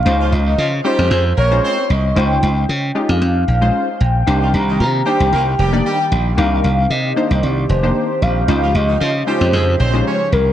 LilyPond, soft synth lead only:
\new Staff \with { instrumentName = "Soft synth lead" } { \time 4/4 \key des \lydian \tempo 4 = 114 f''8 ees''4 c''8 c''8 des''4 ees''8 | g''4~ g''16 r8 f''4.~ f''16 g''8~ | g''8 bes''4 g''4. g''4 | f''4 ees''4 d''8 c''4 f''8~ |
f''8 ees''4 c''4 des''4 bes'8 | }